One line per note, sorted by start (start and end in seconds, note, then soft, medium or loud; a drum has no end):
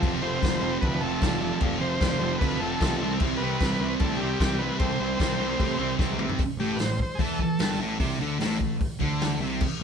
0.00 0.17 F1 medium
0.00 0.22 F2 loud
0.00 0.20 C3 medium
0.00 3.04 C4 loud
0.00 0.14 F4 loud
0.00 0.14 A4 loud
0.00 0.15 C5 loud
0.00 kick loud
0.00 crash medium
0.04 0.23 F3 loud
0.22 0.37 F1 loud
0.22 0.41 F2 medium
0.22 0.41 C3 loud
0.22 0.42 F3 medium
0.22 0.38 F4 medium
0.22 0.38 A4 medium
0.22 0.38 B4 medium
0.22 0.78 C5 loud
0.41 0.57 F1 medium
0.41 0.60 F2 loud
0.41 0.60 C3 loud
0.41 0.61 F3 loud
0.41 0.74 F4 medium
0.41 0.74 A4 medium
0.41 0.74 B5 medium
0.41 kick loud
0.41 snare loud
0.41 crash medium
0.61 0.76 F1 loud
0.61 0.81 F2 medium
0.61 0.82 C3 medium
0.61 0.82 F3 medium
0.81 0.97 D2 medium
0.81 1.00 F2 loud
0.81 1.02 C3 loud
0.81 1.02 F3 loud
0.81 1.13 F4 medium
0.81 1.13 A4 medium
0.81 1.02 B4 loud
0.81 1.13 C5 medium
0.81 kick loud
0.81 crash medium
1.00 1.15 F1 loud
1.00 1.20 F2 medium
1.00 1.20 C3 loud
1.00 1.21 F3 medium
1.00 1.40 A4 loud
1.21 1.51 F1 medium
1.21 1.39 F2 loud
1.21 1.40 C3 medium
1.21 1.40 F3 loud
1.21 1.53 F4 medium
1.21 1.54 A4 medium
1.21 1.54 D5 medium
1.21 kick loud
1.21 snare loud
1.21 crash medium
1.40 1.59 F2 medium
1.40 1.60 C3 medium
1.40 1.61 F3 medium
1.40 1.60 A4 medium
1.61 1.77 F1 medium
1.61 1.78 F2 medium
1.61 1.79 C3 loud
1.61 1.80 F3 loud
1.61 1.78 F4 loud
1.61 1.78 A4 medium
1.61 1.78 D5 loud
1.61 kick loud
1.61 crash medium
1.79 1.96 F1 medium
1.79 1.99 F2 medium
1.79 2.01 C3 medium
1.79 2.01 F3 loud
1.79 1.97 F4 medium
1.79 1.97 A4 medium
1.79 2.37 C5 loud
1.79 1.97 C5 medium
2.00 2.16 F1 medium
2.00 2.19 F2 loud
2.00 2.20 C3 loud
2.00 2.20 F3 loud
2.00 2.33 F4 medium
2.00 2.32 A4 medium
2.00 2.33 D5 medium
2.00 kick loud
2.00 snare loud
2.00 crash medium
2.20 2.35 F1 medium
2.20 2.39 F2 medium
2.20 2.40 C3 medium
2.20 2.41 F3 loud
2.38 2.56 D2 loud
2.38 2.60 F2 loud
2.38 2.61 C3 loud
2.38 2.62 F3 loud
2.38 2.60 B4 loud
2.38 kick loud
2.38 crash medium
2.43 2.73 F4 medium
2.43 2.73 A4 medium
2.43 2.73 C5 medium
2.59 2.74 F1 medium
2.59 2.80 F2 medium
2.59 2.81 C3 loud
2.59 2.83 F3 loud
2.59 2.97 A4 loud
2.81 2.96 B1 loud
2.81 3.00 F2 medium
2.81 3.00 C3 loud
2.81 3.01 F3 loud
2.81 3.01 F4 medium
2.81 3.01 A4 medium
2.81 3.01 C5 medium
2.81 kick loud
2.81 snare loud
2.81 crash medium
2.98 3.15 C2 loud
2.98 3.33 E4 medium
2.98 3.33 G4 medium
2.98 3.18 A4 medium
3.03 3.22 C3 medium
3.03 3.22 G3 medium
3.03 3.23 C4 loud
3.03 3.33 C5 loud
3.20 3.35 C2 loud
3.20 3.40 C3 medium
3.20 3.42 G3 loud
3.20 3.42 C4 loud
3.20 kick loud
3.20 crash medium
3.37 3.55 C2 loud
3.37 3.62 C3 medium
3.37 3.95 B4 loud
3.42 3.62 G3 medium
3.42 3.63 C4 loud
3.42 3.56 E4 medium
3.42 3.57 G4 medium
3.42 3.57 C5 medium
3.60 3.76 C2 medium
3.60 3.81 C3 loud
3.60 3.82 G3 loud
3.60 3.92 C4 medium
3.60 3.82 C4 loud
3.60 3.91 E4 medium
3.60 3.91 G4 medium
3.60 kick loud
3.60 snare loud
3.60 crash medium
3.80 3.95 C2 loud
3.80 3.99 C3 loud
3.80 4.00 G3 medium
3.80 4.01 C4 medium
3.99 4.15 A2 loud
3.99 4.21 C3 medium
3.99 4.21 G3 medium
3.99 4.22 C4 loud
3.99 4.30 E4 medium
3.99 4.31 G4 medium
3.99 4.19 A4 medium
3.99 4.31 D5 medium
3.99 kick loud
3.99 crash medium
4.17 4.34 C2 medium
4.17 4.39 G4 medium
4.22 4.40 C3 medium
4.22 4.41 G3 loud
4.22 4.41 C4 loud
4.40 4.70 C2 loud
4.40 4.61 C3 loud
4.40 4.61 G3 loud
4.40 4.62 C4 loud
4.40 4.71 E4 medium
4.40 4.71 G4 medium
4.40 4.61 G4 medium
4.40 4.71 C5 medium
4.40 kick loud
4.40 snare loud
4.40 crash medium
4.59 4.80 C3 medium
4.59 4.81 G3 medium
4.59 4.78 B4 medium
4.63 4.81 C4 medium
4.79 4.95 C2 medium
4.79 4.99 C3 loud
4.79 5.00 G3 loud
4.79 5.00 C4 loud
4.79 4.95 E4 medium
4.79 4.95 G4 medium
4.79 4.95 A4 loud
4.79 5.95 C5 loud
4.79 kick loud
4.79 crash medium
5.00 5.15 C2 medium
5.00 5.17 C3 medium
5.00 5.18 G3 loud
5.00 5.19 C4 medium
5.00 5.16 E4 medium
5.00 5.16 G4 medium
5.00 5.16 B4 medium
5.18 5.35 C2 medium
5.18 5.38 C3 loud
5.18 5.38 G3 loud
5.18 5.39 C4 loud
5.18 5.51 E4 medium
5.18 5.51 G4 medium
5.18 5.52 C5 medium
5.18 kick loud
5.18 snare loud
5.18 crash medium
5.39 5.55 C2 loud
5.39 5.57 C3 medium
5.39 5.58 G3 medium
5.39 5.59 C4 medium
5.58 5.75 A2 loud
5.58 5.77 C3 loud
5.58 5.78 G3 medium
5.58 5.79 C4 loud
5.58 5.91 E4 medium
5.58 5.91 G4 medium
5.58 5.91 C5 loud
5.58 kick loud
5.58 crash medium
5.79 5.94 C2 medium
5.79 5.97 C3 medium
5.79 5.98 G3 loud
5.79 5.99 C4 loud
5.98 6.29 B1 loud
5.98 6.17 C3 loud
5.98 6.19 G3 loud
5.98 6.19 C4 loud
5.98 6.30 E4 loud
5.98 6.30 G4 medium
5.98 6.30 C5 loud
5.98 kick loud
5.98 snare medium
6.19 6.38 C3 medium
6.19 6.39 G3 medium
6.19 6.39 C4 medium
6.19 mid tom loud
6.29 floor tom loud
6.39 kick loud
6.39 open hi-hat medium
6.57 6.77 A1 loud
6.57 6.78 A2 loud
6.57 6.79 G4 medium
6.76 6.98 A1 medium
6.76 6.96 A2 medium
6.76 6.79 B4 medium
6.76 open hi-hat medium
6.80 7.00 C5 loud
6.80 snare loud
6.99 7.21 C5 medium
6.99 kick medium
7.15 7.38 E2 loud
7.15 7.39 E3 loud
7.15 7.18 G#4 medium
7.15 open hi-hat medium
7.19 7.40 A4 medium
7.19 kick loud
7.39 7.80 A4 loud
7.39 kick medium
7.59 7.78 G1 loud
7.59 7.79 G2 loud
7.59 snare loud
7.59 open hi-hat medium
7.79 7.98 A1 medium
7.79 7.99 A2 loud
7.99 8.19 C2 medium
7.99 8.19 C3 loud
7.99 kick loud
7.99 open hi-hat medium
8.19 8.39 D2 loud
8.19 8.39 D3 loud
8.39 8.59 A1 medium
8.39 8.58 A2 loud
8.39 snare loud
8.39 open hi-hat medium
8.59 8.79 A1 medium
8.59 8.76 A2 medium
8.59 kick medium
8.80 kick loud
8.80 open hi-hat medium
9.00 9.38 D2 loud
9.00 9.40 D3 loud
9.00 kick medium
9.21 snare loud
9.21 open hi-hat medium
9.39 9.59 C2 loud
9.39 9.60 C3 medium
9.61 kick loud
9.61 crash loud
9.80 9.83 A1 loud